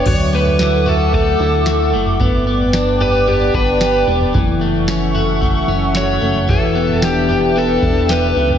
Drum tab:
CC |x---------------|----------------|----------------|----------------|
SD |----o-------o---|----o-------o---|----o-------o---|----o-------o---|
FT |o--o--o-o------o|o--o--o-o------o|o--o--o-o------o|o--o--o--------o|
BD |o-------o-------|o---------o-----|o-------o-------|o---------o-----|